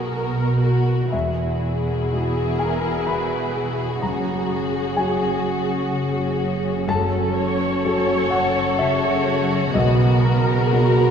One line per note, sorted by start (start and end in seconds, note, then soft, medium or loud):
0.00 1.16 B1 soft
0.00 1.18 B2 soft
0.00 1.10 A#3 soft
0.00 0.35 F#4 soft
0.00 0.59 F#4 soft
0.00 1.10 F#4 soft
0.00 0.12 G#4 soft
0.00 0.60 A#4 soft
0.00 1.17 A#4 soft
0.00 1.16 D#5 soft
0.11 1.02 B1 soft
0.11 1.02 B2 soft
0.11 4.01 B3 soft
0.11 0.62 A#4 soft
0.36 0.86 F#4 soft
0.61 1.05 E4 soft
0.61 1.10 F#4 soft
0.61 1.13 F#4 soft
0.61 1.12 A#4 soft
0.87 4.47 F#4 soft
1.12 3.98 E1 soft
1.12 2.09 E2 soft
1.12 4.06 E2 soft
1.12 3.98 E2 soft
1.12 3.97 E4 soft
1.12 6.83 F#4 soft
1.12 3.98 G#4 soft
1.12 2.55 E5 soft
1.38 2.34 E4 soft
1.62 2.10 G#4 soft
1.88 2.29 A#4 soft
2.11 3.98 G#3 soft
2.11 3.99 E4 soft
2.11 3.99 F#4 soft
2.11 2.56 G#4 soft
2.11 2.58 G#4 soft
2.35 2.82 E4 soft
2.59 4.71 G#4 soft
2.59 3.07 A#4 soft
2.59 3.04 G#5 soft
2.83 3.30 E4 soft
3.07 4.06 B2 soft
3.07 3.55 B4 soft
3.07 3.98 B5 medium
3.31 3.76 E4 soft
3.54 6.88 G#4 soft
3.54 3.95 D#5 soft
3.77 4.05 E4 soft
4.02 9.70 F#1 soft
4.02 6.86 F#2 soft
4.02 9.71 F#2 soft
4.02 4.94 F#2 soft
4.02 9.70 C#4 soft
4.02 6.84 F#4 medium
4.02 4.92 A#5 medium
4.26 5.19 C#4 soft
4.49 4.95 F#4 soft
4.72 5.13 G#4 soft
4.96 6.84 F#3 soft
4.96 6.84 C#4 soft
4.96 5.43 F#4 soft
4.96 6.84 F#4 soft
4.96 6.36 G#5 medium
5.20 5.66 C#4 soft
5.44 9.34 F#4 soft
5.67 6.15 C#4 soft
5.91 6.91 C#3 soft
6.16 6.63 C#4 soft
6.40 6.80 B3 soft
6.64 7.11 C#4 soft
6.88 9.78 F#2 medium
6.88 7.81 F#2 medium
6.88 11.11 F#4 medium
6.88 9.71 A4 medium
6.88 7.35 A4 medium
6.88 8.27 A5 medium
7.12 8.07 C#4 soft
7.35 7.83 A4 soft
7.35 7.83 C#5 medium
7.60 8.00 B4 soft
7.84 9.71 F#3 soft
7.84 9.71 C#4 soft
7.84 8.30 A4 soft
7.84 9.71 A4 soft
7.84 8.76 C#5 medium
8.08 8.54 C#4 soft
8.31 9.78 A4 soft
8.31 8.75 F#5 medium
8.55 9.02 C#4 soft
8.77 9.79 C#3 soft
8.77 9.74 C#5 medium
8.77 9.71 E5 medium
9.03 9.49 C#4 soft
9.27 9.68 B3 soft
9.50 9.78 C#4 soft
9.73 10.70 B1 medium
9.73 11.11 B1 medium
9.73 11.11 B2 medium
9.73 10.22 B3 medium
9.73 11.11 B3 medium
9.73 11.11 A#4 medium
9.73 11.11 D#5 medium
9.99 10.96 A#4 soft
10.23 10.72 F#4 soft
10.23 10.73 A#4 medium
10.48 10.90 G#4 soft
10.71 11.11 F#3 soft
10.71 11.11 B3 soft
10.71 11.11 F#4 medium
10.71 11.11 F#4 soft
10.71 11.11 A#4 soft
10.98 11.11 A#4 soft